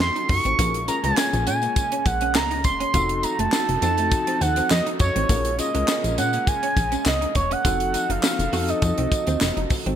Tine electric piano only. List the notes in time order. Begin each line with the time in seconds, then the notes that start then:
0.58 C#4 F4 G#4 A#4
0.88 C#4 F4 G#4 A#4
1.04 C#4 F4 G#4 B4
1.11 C#5
2.94 C4 D#4 F#4 A4
3.53 C4 D#4 F#4 A4
3.82 C4 D#4 F#4 A4
5.29 C#4 F4 G#4 A#4
5.58 C#4 F4 G#4 C#5
5.74 C#4 F4 G#4 A#4
7.65 C4 D#4 F#4 A4
8.23 C4 D#4 F#4 A4
8.53 C4 D#4 F#4 A4